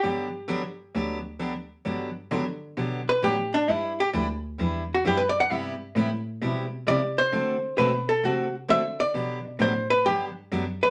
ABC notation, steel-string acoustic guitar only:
X:1
M:4/4
L:1/8
Q:"Swing" 1/4=132
K:G
V:1 name="Steel-string acoustic guitar"
[D,F,B,DG] z [D,F,B,DG] z [D,F,B,DG] z [D,F,B,DG] z | [D,F,B,DG] z [D,F,B,DG] z [D,F,B,DG] z [D,F,B,DG] z | [G,DEB] z [G,DEB] z [G,DEB] z [G,DEB] z | [C,G,B,EG] z [C,G,B,EG] z [C,G,B,EG] z [C,G,B,EG] z |
[D,A,CFA] z [D,A,CFA] z [D,A,CFA] z [D,A,CFA] z | [D,F,B,DG] z [D,F,B,DG] z [D,F,B,DG] z [D,F,B,DG] z |]